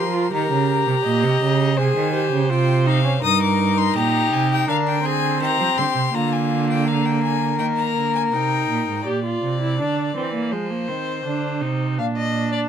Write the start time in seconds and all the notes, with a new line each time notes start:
Already playing: F3 A#4 C6
0.14 F4
0.32 D#3 G4 A#4 A#5
0.51 C#3
0.87 C3
1.05 A#2 D#5
1.24 C3
1.42 C#3
1.77 C3 G#4 C5 G#5
1.96 D#3
2.13 G4 C5
2.32 C#3
2.50 C3 F4 G5
2.86 D#4 F5
3.04 C#4
3.22 G2 D#4 A#4 D#6
3.42 D6
3.78 C6
3.95 A#2 G4 A#5
4.32 C3 G#5
4.51 G5
4.68 D3 D4 A#4 F5
4.87 G5
5.03 C4 G#4 G#5
5.41 D#3 G4 A#5
5.60 F3
5.77 D3 C6
5.95 C3
6.13 D3 A#3 F4 A#5
6.33 G#5
6.69 G5
6.87 A#4 F5
7.05 G5
7.23 G#5
7.58 D#3 A#3 G5
7.77 A#5
7.96 D3
8.15 G#5
8.32 C3 D#4 G5
8.69 A#2
8.88 G#2
9.06 A#2 G4 D5
9.25 F4
9.43 C3
9.61 E4
9.79 D3 D4
10.15 E3 C4
10.34 A#3
10.52 F3 G#3 C5
10.71 A#3
10.88 D#3 C4
11.24 D3 D4
11.61 C3 D#4
11.98 A#2 D4 F5
12.16 D#5
12.52 D5